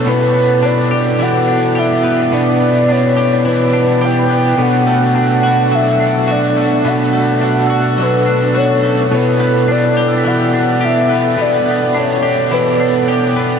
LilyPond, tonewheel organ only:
<<
  \new Staff \with { instrumentName = "Tonewheel organ" } { \time 4/4 \key g \lydian \tempo 4 = 106 << { a'1 | b'1 | a'1~ | a'1 |
a'1~ | a'1 | } \\ { e'1~ | e'1 | d'1~ | d'1 |
e'1 | fis''1 | } >> }
  \new Staff \with { instrumentName = "Tonewheel organ" } { \clef bass \time 4/4 \key g \lydian << { b1~ | b1~ | b1~ | b1 |
b1~ | b1 | } \\ { b,1~ | b,1 | b,1~ | b,1~ |
b,1~ | b,1 | } >> }
>>